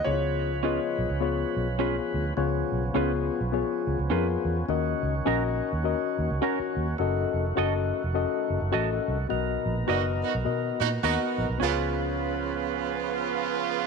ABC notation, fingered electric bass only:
X:1
M:4/4
L:1/16
Q:"Swing" 1/4=104
K:Dbmix
V:1 name="Fingered electric bass" clef=bass
D,,4- D,, z C,, D,,3 C,,4 =D,,2 | D,,2 C,,2 D,,3 C,,2 z D,, D,, F,,2 _F,,2 | E,,2 D,,2 B,,,3 E,,2 z E,, D,, z2 E,,2 | G,,,2 F,,,2 G,,,3 F,,,2 z G,,, G,,, =A,,,2 =C,,2 |
C,,2 B,,,2 G,,,3 C,, C,2 B,,2 E,, z B,,, C,, | D,,16 |]